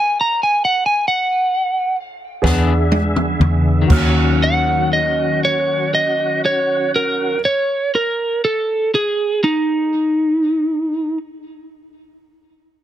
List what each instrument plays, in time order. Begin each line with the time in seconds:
0.00 lead electric guitar G#5
0.21 lead electric guitar A#5
0.43 lead electric guitar G#5
0.65 lead electric guitar F#5
0.86 lead electric guitar G#5
1.08 lead electric guitar F#5
2.42 fingered electric bass E2, clean electric guitar E3 B3 D4 G#4, tonewheel organ D4 G#4 E5, upright piano G#4 B4 D5 F#5, kick, snare
2.92 high tom
3.16 mid tom
3.40 fingered electric bass E2, mid tom
3.82 clean electric guitar D#3
3.87 fingered electric bass D#2, upright piano A#3 F#4 C#5, tonewheel organ C#4 F#4 F#5, kick, crash
3.91 clean electric guitar F#3, upright piano F6
3.97 clean electric guitar C#4
4.44 lead electric guitar F#5
4.93 lead electric guitar D#5
5.45 lead electric guitar C#5
5.95 lead electric guitar D#5
6.45 lead electric guitar C#5
6.96 lead electric guitar A#4
7.45 lead electric guitar C#5
7.95 lead electric guitar A#4
8.45 lead electric guitar A4
8.95 lead electric guitar G#4
9.44 lead electric guitar D#4